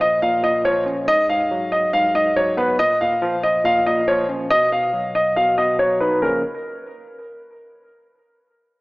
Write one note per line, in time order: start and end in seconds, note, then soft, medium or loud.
0.00 0.22 A#2 medium
0.00 0.63 F3 medium
0.00 0.18 D#5 medium
0.22 0.42 A#2 medium
0.22 0.39 F5 medium
0.43 1.08 A#2 medium
0.43 0.61 D#5 medium
0.65 1.08 F3 medium
0.65 0.82 C#5 medium
0.86 1.08 C#4 medium
1.07 1.28 G#2 loud
1.07 1.25 D#5 loud
1.29 1.92 G#2 medium
1.29 1.70 F5 medium
1.51 2.35 F#3 medium
1.72 1.89 D#5 medium
1.93 2.13 G#2 medium
1.93 2.11 F5 medium
2.15 2.79 G#2 medium
2.15 2.32 D#5 medium
2.36 2.79 F#3 medium
2.36 2.54 C#5 medium
2.57 2.79 B3 medium
2.57 2.75 B4 medium
2.79 3.00 A#2 medium
2.79 2.96 D#5 loud
3.01 3.63 A#2 medium
3.01 3.41 F5 medium
3.22 4.06 F3 loud
3.43 3.61 D#5 medium
3.65 3.85 A#2 medium
3.65 3.82 F5 medium
3.86 4.51 A#2 medium
3.86 4.04 D#5 medium
4.07 4.50 F3 medium
4.07 4.25 C#5 medium
4.29 4.51 C#4 medium
4.50 4.71 B2 medium
4.50 4.68 D#5 loud
4.72 5.35 B2 medium
4.72 5.12 F5 medium
4.93 5.78 F#3 medium
5.15 5.32 D#5 medium
5.36 5.57 B2 medium
5.36 5.54 F5 medium
5.58 6.22 B2 medium
5.58 5.75 D#5 medium
5.79 6.22 F#3 medium
5.79 5.96 C#5 medium
6.00 6.22 D#4 medium
6.00 6.18 B4 medium
6.22 6.42 C#3 medium
6.22 6.42 F3 medium
6.22 6.42 A#3 medium
6.22 6.42 C#4 loud
6.22 6.42 A#4 medium